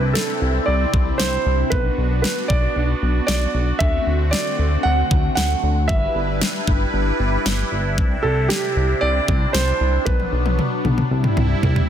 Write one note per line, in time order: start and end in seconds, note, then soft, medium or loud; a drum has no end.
0.00 0.17 C2 loud
0.00 1.70 C3 medium
0.00 1.70 C4 medium
0.00 1.68 D4 medium
0.00 1.68 E4 medium
0.00 0.15 B4 medium
0.14 0.68 A4 medium
0.14 snare loud
0.42 0.60 C2 loud
0.66 0.86 C2 loud
0.66 1.20 D5 medium
0.94 1.12 C2 loud
0.94 kick loud
1.18 1.38 C2 loud
1.18 1.73 C5 medium
1.18 snare loud
1.46 1.64 C2 loud
1.70 1.90 B1 loud
1.70 3.79 B3 medium
1.70 3.79 D4 medium
1.70 5.85 F#4 medium
1.70 2.21 B4 medium
1.70 kick loud
1.98 2.25 B1 medium
2.22 2.50 B4 medium
2.22 snare loud
2.48 2.68 B1 loud
2.48 3.25 D5 medium
2.48 kick medium
2.76 2.94 B1 loud
3.02 3.21 B1 loud
3.27 3.47 B1 loud
3.27 3.81 D5 medium
3.27 snare loud
3.54 3.73 B1 medium
3.79 3.99 D2 loud
3.79 5.87 D3 medium
3.79 5.87 A3 medium
3.79 5.87 C4 medium
3.79 4.33 E5 loud
3.79 kick loud
4.07 4.34 D2 medium
4.31 4.86 D5 medium
4.31 snare loud
4.59 4.77 D2 loud
4.83 5.03 D2 loud
4.83 5.34 F#5 loud
5.11 5.29 D2 loud
5.11 kick medium
5.35 5.55 D2 loud
5.35 5.85 F#5 loud
5.35 snare loud
5.63 5.91 D2 loud
5.88 6.08 G1 loud
5.88 7.96 G3 medium
5.88 11.89 D4 medium
5.88 10.03 E4 medium
5.88 7.96 B4 medium
5.88 6.89 E5 medium
5.88 kick loud
6.15 6.43 G1 loud
6.41 snare loud
6.67 6.86 G1 loud
6.67 kick medium
6.94 7.12 G1 loud
7.20 7.38 G1 loud
7.46 7.64 G1 loud
7.46 snare loud
7.72 8.00 G1 loud
7.98 8.16 C2 loud
7.98 10.05 C3 medium
7.98 10.05 C4 medium
7.98 kick loud
8.23 8.51 C2 loud
8.23 8.50 A4 medium
8.49 9.03 G4 medium
8.49 snare loud
8.76 8.94 C2 loud
9.01 9.20 C2 loud
9.01 9.50 D5 loud
9.28 9.47 C2 loud
9.28 kick loud
9.53 9.73 C2 loud
9.53 10.08 C5 loud
9.53 snare loud
9.81 9.99 C2 loud
10.05 10.25 B1 loud
10.05 11.10 F#3 medium
10.05 11.10 B3 medium
10.05 10.54 B4 medium
10.05 kick loud
10.05 high tom medium
10.20 high tom soft
10.32 10.60 B1 medium
10.46 high tom medium
10.59 mid tom medium
10.85 11.03 B1 loud
10.85 mid tom medium
10.98 mid tom medium
11.11 11.29 C2 loud
11.11 11.89 C3 medium
11.11 11.89 G3 medium
11.11 11.89 E4 medium
11.24 mid tom medium
11.37 11.55 C2 loud
11.37 mid tom medium
11.63 11.81 C2 loud
11.63 floor tom medium
11.76 floor tom medium